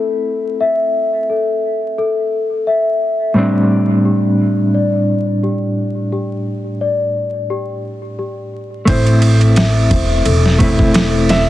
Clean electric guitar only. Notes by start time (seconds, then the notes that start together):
Already playing: A3 C4 E4
3.34 A2 G3 C4
3.39 D4
8.85 A3 C4
8.89 E4
10.59 A3 C4
10.63 E4